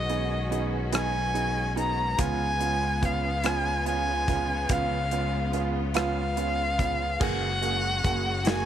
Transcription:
Already playing: B1 D#3 F#3 G#3 B3 C#4 F#4 G#4 D#5
0.09 B3 D#4 G#4, closed hi-hat
0.30 G#4
0.51 B3 D#4 G#4, closed hi-hat
0.72 B3
0.92 F#3 B3 D#4 G#4 G#5, cross-stick, closed hi-hat
1.14 B3
1.34 B3 D#4 G#4, closed hi-hat
1.56 G#4
1.76 B3 D#4 G#4 A#5, closed hi-hat
1.97 B3
2.18 C#2 C#3 F3 B3 C#4 F4 G#5, kick, closed hi-hat
2.40 B3
2.60 B3 C#4 F4, closed hi-hat
2.81 G#4
3.01 B3 C#4 F4 F5, kick, closed hi-hat
3.24 B3
3.44 F3 B3 C#4 F4 G#5, cross-stick, closed hi-hat
3.66 B3
3.85 B3 C#4 F4 G#5, closed hi-hat
4.07 G#4
4.28 B3 C#4 F4, kick, closed hi-hat
4.49 B3
4.69 C#2 F3 B3 C#4 F4 F5, kick, closed hi-hat
4.90 B3
5.11 B3 C#4 F4, closed hi-hat
5.33 G#4
5.53 B3 C#4 F4, closed hi-hat
5.75 B3
5.94 F3 B3 C#4 F4 F5, cross-stick, closed hi-hat
6.17 B3
6.37 B3 C#4 F4, closed hi-hat
6.58 G#4
6.78 B3 C#4 F4, kick, closed hi-hat
7.00 B3
7.20 F#1 C#3 F#3 G#3 A#3 F#4 G#4 F#5, kick, crash
7.62 A#3 C#4 F#4 G#4, closed hi-hat
8.04 F#1 A#3 F#4 G#4, kick, closed hi-hat
8.45 A#3 F#4 G#4 G#5, snare, closed hi-hat

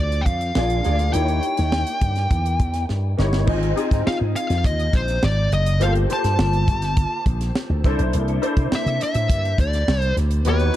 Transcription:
Already playing: D2 C4 D4 F4 A4 D5
0.12 closed hi-hat
0.21 G5
0.26 F2 F5, kick, closed hi-hat
0.41 closed hi-hat
0.55 A#1 A#3 D4 F4 G#4 D5, snare
0.70 closed hi-hat
0.84 D2 A#3 D4 F4 G#4 D5, snare, closed hi-hat
0.99 closed hi-hat
1.13 D#2 A#3 D#4 E4 G4 C#5 G5, closed hi-hat
1.28 closed hi-hat
1.43 closed hi-hat
1.57 D#2, snare, closed hi-hat
1.72 snare
1.87 closed hi-hat
2.01 G2, kick, closed hi-hat
2.16 snare, closed hi-hat
2.31 E2, kick, closed hi-hat
2.46 closed hi-hat
2.60 E2, kick, closed hi-hat
2.74 snare, closed hi-hat
2.89 G2, snare
3.17 G1 A#3 D#4 E4 G4 C#5, snare
3.33 snare
3.46 G#1 C4 D#4 F4 G#4 D#5, kick, crash
3.63 closed hi-hat
3.75 C4 D#4 F4 G#4 D#5, closed hi-hat
3.91 G#2, kick, snare, closed hi-hat
4.07 F5, muted slap bass stroke, snare
4.21 G#2
4.36 F5, closed hi-hat
4.50 F2, snare, closed hi-hat
4.64 D#2 D#5, kick, closed hi-hat
4.80 closed hi-hat
4.93 A#1 C5, kick, closed hi-hat
5.08 snare, closed hi-hat
5.23 G#1 D5, snare
5.52 F#1 D#5, closed hi-hat
5.66 closed hi-hat
5.80 G1 A#3 F4 G4 A4 C5 F5, closed hi-hat
5.95 closed hi-hat
6.09 A#3 F4 G4 A4 C5 A5, closed hi-hat
6.24 G2, snare, closed hi-hat
6.39 G1, snare
6.53 closed hi-hat
6.68 G1, kick, closed hi-hat
6.82 snare, closed hi-hat
6.97 kick, closed hi-hat
7.26 A#1, kick, closed hi-hat
7.41 snare, closed hi-hat
7.55 snare
7.70 D2
7.84 C2 A#3 D4 E4 A4 C5, kick, snare, closed hi-hat
7.99 B1, closed hi-hat
8.13 C2, closed hi-hat
8.28 closed hi-hat
8.41 A#3 D4 E4 A4 C5, closed hi-hat
8.57 C3, kick, closed hi-hat
8.72 E5, muted slap bass stroke, snare
8.86 C3, closed hi-hat
9.01 E5, closed hi-hat
9.14 A2, closed hi-hat
9.30 G2, kick, closed hi-hat
9.45 closed hi-hat
9.58 D2 D5, kick, closed hi-hat
9.73 snare, closed hi-hat
9.88 C2, snare
10.01 C5, closed hi-hat
10.17 D2, snare, closed hi-hat
10.31 closed hi-hat
10.45 D#2 B3 D#4 F#4 G4 B4 C#5, closed hi-hat
10.59 closed hi-hat

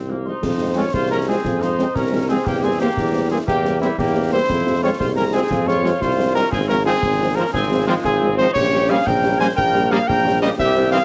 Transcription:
Already playing: C2 G#4
0.09 F3 G#3 A#3 C4
0.24 F3 G#3 C4 D#4 C5 C6
0.41 F2 G#4, concert bass drum, snare, crash
0.58 F3 G#3 C4 D#4
0.75 F3 G#3 C4 F4 C#5 C#6
0.93 C2 F4 G#4 C5 C6, concert bass drum, snare
1.10 F3 G#3 C4 C#4 A#4 A#5
1.27 F3 G#3 C4 G#4 G#5
1.44 F2 F4, concert bass drum, snare
1.59 F3 G#3 C4 D#4 C5 C6, snare
1.78 F3 G#3 C4 C#4, snare
1.95 C2 C4 C#4 A#4 A#5, concert bass drum, snare
2.12 F3 G#3 C4
2.28 F3 G#3 C4 G#4 G#5
2.45 E2 A#3 G4 G5, concert bass drum, snare, crash
2.63 G3 A#3 C4 G#4 G#5
2.80 G3 A#3 C4 G4 G5
2.97 E2 E4, concert bass drum, snare
3.14 G3 A#3 C4
3.30 G3 A#3 C4 G#4 G#5
3.47 E2 A#3 G4 G5, concert bass drum, snare
3.64 G3 A#3 C4, snare
3.80 G3 A#3 C4 E4 E5, snare
3.98 E2 A#3 G4 G5, concert bass drum, snare
4.14 G3 A#3 C4
4.30 G3 A#3 C4 E4 C5 C6
4.49 F2 G#4, concert bass drum, snare, crash
4.66 F3 G#3 C4 G4
4.82 F3 G#3 C4 F4 C#5 C#6
4.99 C2 F4 G#4 C5 C6, concert bass drum, snare
5.15 F3 G#3 C4 C#4 A#4 A#5
5.33 F3 G#3 C4 G#4 G#5
5.51 F2 F4, concert bass drum, snare
5.67 F3 G#3 C4 F4 G#4 C#5 C#6, snare
5.83 F3 G#3 C4 G4, snare
6.00 C2 F4 C5 C6, concert bass drum, snare
6.18 F3 G#3 C4
6.34 F3 G#3 C4 C#4 A#4 A#5
6.51 G#1 C4 G#4 G#5, concert bass drum, snare, crash
6.68 F3 G#3 C4 C#4 A#4 A#5
6.85 F3 G#3 C4 G#4 G#5
7.03 G#1, concert bass drum, snare
7.21 F3 G#3 C4
7.36 F3 G#3 C4 C#4 A#4 A#5
7.52 G#1 C4 F4 G#4 G#5, concert bass drum, snare
7.71 F3 G#3 C4
7.86 F3 G#3 C4 F4 F5
8.03 G#1 C4 G#4 G#5, concert bass drum, snare
8.21 F3 G#3 C4
8.37 F3 G#3 C4 D#4 C5 C6
8.54 A#1 C#4 G4 C#5 C#6, concert bass drum, snare, crash
8.73 G3 C#4
8.89 G3 A#3 C#4 G#4 F5 F6
9.05 A#1 A#4 G5 G6, concert bass drum, snare
9.24 G3 C#4
9.38 G3 A#3 C#4 C5 G#5 G#6
9.56 A#1 A#3 A#4 G5 G6, concert bass drum, snare
9.74 G3 C#4, snare
9.90 G3 A#3 C#4 G#4 F5 F6, snare
10.08 A#1 A#4 G5 G6, concert bass drum, snare
10.25 G3 C#4
10.42 G3 A#3 C#4 G4 D#5 D#6
10.57 C2 G4 E5 E6, concert bass drum, snare, crash
10.76 G3 C4 E4
10.92 E3 G3 C4 E4 G#4 F5 F6

